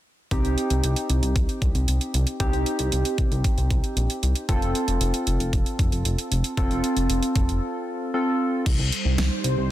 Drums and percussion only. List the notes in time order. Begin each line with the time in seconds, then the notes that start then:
0.31 kick, closed hi-hat
0.45 closed hi-hat
0.58 closed hi-hat
0.70 closed hi-hat
0.84 closed hi-hat
0.96 closed hi-hat
1.10 closed hi-hat
1.23 closed hi-hat
1.36 kick, closed hi-hat
1.49 closed hi-hat
1.62 kick, closed hi-hat
1.75 closed hi-hat
1.88 closed hi-hat
2.01 closed hi-hat
2.14 closed hi-hat
2.27 closed hi-hat
2.40 kick, closed hi-hat
2.53 closed hi-hat
2.66 closed hi-hat
2.79 closed hi-hat
2.92 closed hi-hat
3.05 closed hi-hat
3.18 kick, closed hi-hat
3.32 closed hi-hat
3.44 kick, closed hi-hat
3.58 closed hi-hat
3.71 kick, closed hi-hat
3.84 closed hi-hat
3.97 closed hi-hat
4.10 closed hi-hat
4.23 closed hi-hat
4.35 closed hi-hat
4.49 kick, closed hi-hat
4.62 closed hi-hat
4.75 closed hi-hat
4.88 closed hi-hat
5.01 closed hi-hat
5.14 closed hi-hat
5.27 closed hi-hat
5.40 closed hi-hat
5.53 kick, closed hi-hat
5.66 closed hi-hat
5.79 kick, closed hi-hat
5.92 closed hi-hat
6.05 closed hi-hat
6.18 closed hi-hat
6.32 closed hi-hat
6.44 closed hi-hat
6.57 kick, closed hi-hat
6.71 closed hi-hat
6.84 closed hi-hat
6.97 closed hi-hat
7.10 closed hi-hat
7.23 closed hi-hat
7.36 kick, closed hi-hat
7.49 closed hi-hat
8.66 kick, closed hi-hat, crash
8.92 closed hi-hat
9.18 snare, closed hi-hat
9.44 closed hi-hat